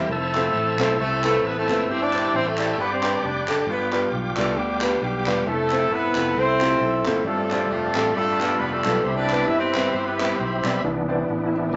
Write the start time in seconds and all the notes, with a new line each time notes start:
Already playing: C5
0.09 F1 A3 C4 E4 A4 E5 A5 E6
0.35 A3 C4 E4 F4 C5, clap
0.54 A1
0.79 B1 A3 C4 E4 F4 C5, clap
0.99 C2 A3 C4 E4 A4
1.24 A3 C4 E4 F4 A4 B4, clap
1.43 A1 B3 B4
1.58 A3 C4 E4 A4
1.68 F#1 A3 C4 E4 F4 B4, clap
1.87 G1 G2 C4 E4 G4 C5 E5 G5 E6
2.01 D4 G4 D5
2.13 E4 G4 C5, clap
2.34 A1 C4 C5
2.47 A3 C4 E4 A4
2.58 E4 G4 D5, clap
2.77 G1 G2 B3 D4 G4 B4 D5 D6
2.92 C4 G4 C5
3.03 D4 G4 B4, clap
3.23 F1 D4 G4 B4 D5
3.47 F#1 D4 G4 A4, clap
3.66 G1 G2 B3 D4 F4 B4 F5 G5
3.92 G3 B3 D4 F4 B4, clap
4.12 B1
4.36 C2 G3 A3 B3 D4 F4 A4 D5, clap
4.57 D2 G3 B3 D4 G4
4.81 G3 B3 D4 F4 B4, clap
5.01 B1 G3 B3 D4 G4
5.26 E1 G3 B3 D4 F4 B4, clap
5.45 F1 A3 C4 E4 A4 E5
5.70 A3 C4 E4 F4 C5, clap
5.90 G1 B3 E4 B4
6.15 F1 A3 C4 E4 F4 A4, clap
6.35 C2 C4 E4 A4 C5
6.61 A3 C4 E4 F4 G4, clap
6.80 B1
7.04 F#1 A3 C4 E4 F4 C5, clap
7.24 G1 G2 A3 C4 F4 G4 A4 D5
7.50 G3 C4 D4 F4 C5, clap
7.69 F1 A3 C4 F4 A4
7.95 A1 G3 C4 D4 F4 A4, clap
8.14 G1 G2 A3 F4 A4 B5
8.18 D4
8.40 G3 B3 D4 F4 B4, clap
8.58 F1 B3 B4
8.72 A3 D4 F4 A4
8.84 B1 G3 B3 D4 F4 A4, clap
9.01 C2 G3 C4 G4 C5
9.05 C3 C4 E4 E5 B5
9.15 D4 G4 B4 D5
9.30 G3 B3 C4 E4 B4, clap
9.46 G1 E4 E5
9.59 C4 E4 G4 C5
9.75 G3 B3 C4 E4 B4, clap
9.92 G1 C4 E4 G4 C5
10.06 B3 E4 G4 B4
10.19 G3 B3 C4 E4 B4, clap
10.38 B1 C4 E4 G4 C5
10.64 B1 G3 B3 C4 E4 D5, clap
10.83 C2 C3 E3 B3 D4 E4
11.08 C4 E4 B4 D5
11.29 A1
11.46 E4
11.54 C4 D4 E4 B4 E5
11.72 C2 E3 A#3